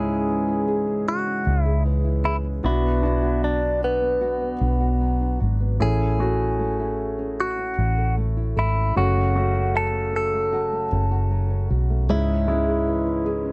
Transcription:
Already playing: fingered electric bass C#2, grand piano G#2 G#3 C#4 E4, nylon-string guitar C#3 C#4 E4, clean electric guitar G#4
0.09 nylon-string guitar G#4
0.29 nylon-string guitar E3
0.48 nylon-string guitar E4
0.68 nylon-string guitar G#4
0.87 nylon-string guitar C#4
1.07 nylon-string guitar C#3 G#4, clean electric guitar F#4
1.26 nylon-string guitar C#4
1.46 fingered electric bass C#2, nylon-string guitar E4
1.62 clean electric guitar E4, nylon-string guitar G#4
1.85 nylon-string guitar E3
2.04 nylon-string guitar E4
2.24 clean electric guitar E4, nylon-string guitar G#4
2.44 nylon-string guitar C#4
2.63 fingered electric bass B1, nylon-string guitar B2 F#4, grand piano B3 D4 F#4, clean electric guitar E4
2.83 nylon-string guitar B3
3.02 grand piano B3 D4 F#4, nylon-string guitar D4
3.22 nylon-string guitar F#4
3.42 nylon-string guitar F#3, clean electric guitar D4
3.81 clean electric guitar B3, nylon-string guitar F#4
4.00 nylon-string guitar B3
4.21 nylon-string guitar B2 F#4
4.41 nylon-string guitar B3
4.60 fingered electric bass B1, nylon-string guitar D4
4.80 nylon-string guitar F#4
5.01 nylon-string guitar F#3
5.20 nylon-string guitar D4
5.40 fingered electric bass G#1, nylon-string guitar F#4
5.60 nylon-string guitar B3
5.80 fingered electric bass A1, nylon-string guitar A2, grand piano A3 C#4 E4, clean electric guitar G#4
6.00 nylon-string guitar C#4
6.19 grand piano A3 C#4 F#4, nylon-string guitar E4
6.59 nylon-string guitar A3
6.79 nylon-string guitar E4
7.19 nylon-string guitar C#4
7.39 clean electric guitar F#4, nylon-string guitar A4
7.59 nylon-string guitar C#4
7.78 fingered electric bass A1, nylon-string guitar E4
7.98 nylon-string guitar A4
8.17 nylon-string guitar A3
8.37 nylon-string guitar E4
8.56 fingered electric bass G#1, clean electric guitar E4, nylon-string guitar A4
8.76 nylon-string guitar C#4
8.96 fingered electric bass F#1, nylon-string guitar F#2 F#4, grand piano C#3 A3 C#4 F#4, clean electric guitar F#4
9.15 nylon-string guitar A3
9.35 grand piano A3 C#4 F#4, nylon-string guitar C#4
9.54 nylon-string guitar F#4
9.74 nylon-string guitar F#3, clean electric guitar A4
9.93 nylon-string guitar C#4
10.13 nylon-string guitar F#4, clean electric guitar A4
10.33 nylon-string guitar A3
10.52 nylon-string guitar F#2 F#4
10.72 nylon-string guitar A3
10.92 fingered electric bass F#1, nylon-string guitar C#4
11.11 nylon-string guitar F#4
11.31 nylon-string guitar F#3
11.51 nylon-string guitar C#4
11.70 fingered electric bass B1, nylon-string guitar F#4
11.90 nylon-string guitar A3
12.09 fingered electric bass C#2, grand piano G#2 G#3 C#4 E4, nylon-string guitar C#3 G#4, clean electric guitar E4
12.29 nylon-string guitar C#4
12.48 grand piano G#3 C#4 E4, nylon-string guitar E4
12.68 nylon-string guitar G#4
12.87 nylon-string guitar E3
13.07 nylon-string guitar E4
13.26 nylon-string guitar G#4
13.45 nylon-string guitar C#4

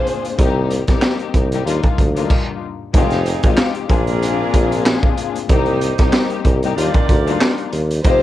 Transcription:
Already playing: string section A#3 C4 D4 F4 G#4, violin section C5
0.07 closed hi-hat
0.25 closed hi-hat
0.37 tuba C2, string section G3 A#3 C4 D#4 G4, kick, closed hi-hat
0.71 closed hi-hat
0.86 tuba C2, string section G3 A#3 C4 D#4 G4, kick, snare, closed hi-hat
1.02 snare, clap
1.19 closed hi-hat
1.34 tuba C2, kick, closed hi-hat
1.52 string section G3 A#3 C4 D#4 G4, closed hi-hat
1.65 tuba D#2, string section G3 A#3 D4 D#4 F4, closed hi-hat
1.83 tuba D2, kick, closed hi-hat
1.98 tuba D2, kick, closed hi-hat
2.15 string section G3 A#3 D4 D#4 F4, closed hi-hat
2.30 kick, crash
2.94 tuba F1, string section G#3 C4 D#4 F4 G4, saxophone section C4 D#4 G#4, kick, closed hi-hat
3.10 snare, closed hi-hat
3.26 closed hi-hat
3.43 tuba G#1, string section G#3 C4 D#4 F4 G4, kick, closed hi-hat
3.57 snare, clap
3.74 closed hi-hat
3.88 tuba A#1, string section A#3 C4 D4 F4 G#4, saxophone section D4 F4 A#4, kick, closed hi-hat
4.05 string section A#3 C4 D4 F4 G#4, closed hi-hat
4.22 closed hi-hat
4.53 tuba A#1, kick, closed hi-hat
4.72 closed hi-hat
4.86 snare, clap
5.03 kick
5.17 closed hi-hat
5.35 closed hi-hat
5.47 tuba C2, string section G3 A#3 C4 D#4 G4, saxophone section D#4 G4 C5, kick, closed hi-hat
5.66 closed hi-hat
5.81 closed hi-hat
5.97 tuba C2, string section G3 A#3 C4 D#4 G4, kick, snare, closed hi-hat
6.13 snare, clap
6.30 closed hi-hat
6.45 tuba C2, kick, closed hi-hat
6.63 string section G3 A#3 C4 D#4 G4, closed hi-hat
6.76 tuba D#2, string section G3 A#3 D4 D#4 F4, saxophone section G4 A#4 D5, closed hi-hat
6.94 tuba D2, kick, closed hi-hat
7.09 tuba D2, kick, closed hi-hat
7.26 string section G3 A#3 D4 D#4 F4, closed hi-hat
7.41 snare, clap
7.58 closed hi-hat
7.73 tuba D#2, closed hi-hat
7.91 closed hi-hat
8.04 tuba F1, string section G#3 C4 D#4 F4 G4, saxophone section G#4 C5 D#5, violin section C5, kick, closed hi-hat

